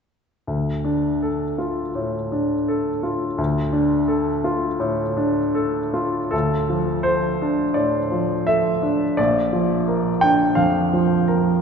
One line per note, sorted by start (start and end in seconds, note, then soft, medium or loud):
0.47 1.90 D2 soft
0.84 1.43 D4 soft
1.22 1.80 A4 soft
1.58 2.16 F4 soft
1.95 2.52 A2 soft
2.32 2.90 D4 soft
2.68 3.25 A4 soft
3.03 3.60 F4 soft
3.38 4.76 D2 soft
3.73 4.29 D4 soft
4.08 4.65 A4 soft
4.44 5.02 F4 soft
4.80 5.39 A2 soft
5.17 5.78 D4 soft
5.55 6.18 A4 soft
5.94 6.33 F4 soft
6.31 7.72 D2 soft
6.31 7.04 A4 medium
6.70 7.27 F3 soft
7.03 7.62 A4 soft
7.03 7.75 C5 medium
7.42 7.98 D4 soft
7.74 8.34 A2 soft
7.74 8.47 D5 soft
8.12 8.69 F3 soft
8.47 9.04 A4 soft
8.47 9.17 E5 medium
8.83 9.18 D4 soft
9.17 10.53 A#1 soft
9.17 10.22 D5 medium
9.53 10.09 F3 soft
9.88 10.44 A#4 soft
10.21 10.79 D4 soft
10.21 10.57 G5 medium
10.55 11.13 F2 soft
10.55 11.62 F5 medium
10.93 11.50 F3 soft
11.28 11.62 A#4 soft